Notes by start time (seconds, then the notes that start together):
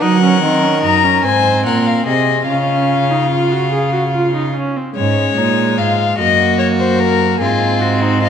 0.02 F#3 D#4 A#4 F#5
0.22 C#4
0.42 D#3 C4
0.63 C#4
0.83 F#2 D#4 A#5
1.04 C#4
1.24 G#2 C4 C5 G#5
1.65 A#2 A#4 F#5
1.87 F5
2.06 C3 G#4 D#5
2.47 C#3 C#4 F4 F5
3.10 D#4
3.31 F4
3.51 F#4
3.72 G#4
3.93 F#4
4.13 F4
4.34 D#4
4.55 C#4
4.76 C4
4.96 G#2 G#3 C#4 C#5
5.37 A#2 D#4
5.78 G#2 F4 F5
6.18 F#2 A#3 F#4 D#5
6.59 C#5
6.79 C5
6.99 A#4
7.40 G#2 C4 F4 G#4
7.81 F#4
8.03 D#4
8.23 F4 D#5